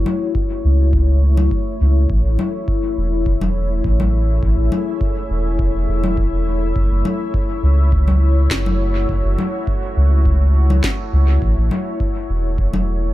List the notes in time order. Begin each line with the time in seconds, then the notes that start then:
Already playing: A3 E4 F#4 C#5 E5
0.06 low conga
0.35 kick
0.64 C#2
0.93 kick
1.37 low conga
1.51 kick
1.81 C#2
2.10 A1, kick
2.25 A1
2.39 low conga
2.68 kick
2.97 E1
3.26 kick
3.41 low conga
3.45 G#4
3.84 A1, kick
4.00 low conga
4.43 A1, kick
4.58 A1
4.72 low conga
5.01 kick
5.30 E1
5.59 kick
5.88 E1
6.04 low conga
6.17 kick
6.76 F#1, kick
6.91 F#1
7.05 low conga
7.34 kick
7.62 C#2 F#4
7.92 kick
8.08 low conga
8.50 F#1, kick, snare
8.66 low conga
9.09 F#1, kick
9.24 F#1
9.39 low conga
9.67 kick
9.97 C#2
10.26 kick
10.70 low conga
10.84 kick, snare
11.13 C#2
11.42 A1, kick
11.58 A1
11.71 low conga
12.00 kick
12.29 E1
12.58 kick
12.66 G#4
12.73 low conga